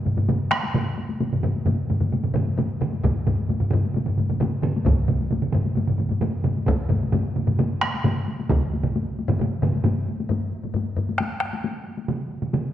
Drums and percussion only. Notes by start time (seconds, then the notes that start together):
0.05 taiko low-mid, taiko mid, taiko high
0.17 taiko low-mid, taiko mid, taiko high
0.28 taiko low-mid, taiko mid, taiko high
0.51 taiko rim, taiko high
0.63 taiko high
0.74 taiko low-mid, taiko mid, taiko high
0.98 taiko high
1.09 taiko high
1.21 taiko low-mid, taiko mid, taiko high
1.33 taiko low-mid, taiko mid
1.43 taiko low-mid, taiko mid, taiko high
1.56 taiko high
1.66 taiko low-mid, taiko mid, taiko high
1.90 taiko low-mid, taiko mid, taiko high
2.00 taiko low-mid, taiko mid, taiko high
2.12 taiko low-mid, taiko mid, taiko high
2.23 taiko low-mid, taiko mid
2.34 taiko low-mid, taiko mid, taiko high
2.48 taiko high
2.57 taiko low-mid, taiko mid, taiko high
2.81 taiko low-mid, taiko mid, taiko high
2.93 taiko high
3.04 taiko, taiko low-mid, taiko mid, taiko high
3.27 taiko low-mid, taiko mid, taiko high
3.39 taiko high
3.49 taiko low-mid, taiko mid, taiko high
3.60 taiko low-mid, taiko mid
3.70 taiko low-mid, taiko mid, taiko high
3.85 taiko high
3.94 taiko low-mid, taiko mid, taiko high
4.06 taiko low-mid, taiko mid
4.17 taiko low-mid, taiko mid, taiko high
4.29 taiko low-mid, taiko mid, taiko high
4.40 taiko low-mid, taiko mid, taiko high
4.62 taiko low-mid, taiko mid, taiko high
4.76 taiko high
4.85 taiko, taiko low-mid, taiko mid, taiko high
5.08 taiko low-mid, taiko mid, taiko high
5.21 taiko high
5.31 taiko low-mid, taiko mid, taiko high
5.42 taiko low-mid, taiko mid
5.53 taiko low-mid, taiko mid, taiko high
5.66 taiko high
5.76 taiko low-mid, taiko mid, taiko high
5.88 taiko low-mid, taiko mid
5.98 taiko low-mid, taiko mid, taiko high
6.09 taiko low-mid, taiko mid, taiko high
6.21 taiko low-mid, taiko mid, taiko high
6.44 taiko low-mid, taiko mid, taiko high
6.57 taiko high
6.66 taiko, taiko low-mid, taiko mid, taiko high
6.89 taiko low-mid, taiko mid, taiko high
7.03 taiko high
7.12 taiko low-mid, taiko mid, taiko high
7.36 taiko low-mid, taiko mid, taiko high
7.47 taiko low-mid, taiko mid, taiko high
7.59 taiko low-mid, taiko mid, taiko high
7.81 taiko rim, taiko high
7.94 taiko high
8.04 taiko low-mid, taiko mid, taiko high
8.28 taiko high
8.39 taiko high
8.50 taiko, taiko low-mid, taiko mid, taiko high
8.74 taiko high
8.84 taiko low-mid, taiko mid, taiko high
8.96 taiko high
9.19 taiko high
9.28 taiko low-mid, taiko mid, taiko high
9.39 taiko low-mid, taiko mid, taiko high
9.62 taiko low-mid, taiko mid, taiko high
9.76 taiko high
9.84 taiko low-mid, taiko mid, taiko high
10.09 taiko high
10.20 taiko high
10.29 taiko low-mid, taiko high
10.64 taiko low-mid, taiko high
10.74 taiko low-mid, taiko high
10.97 taiko low-mid, taiko high
11.09 taiko high
11.18 taiko rim, taiko high
11.40 taiko rim
11.53 taiko high
11.64 taiko high
11.97 taiko high
12.08 taiko mid, taiko high
12.42 taiko mid, taiko high
12.53 taiko mid, taiko high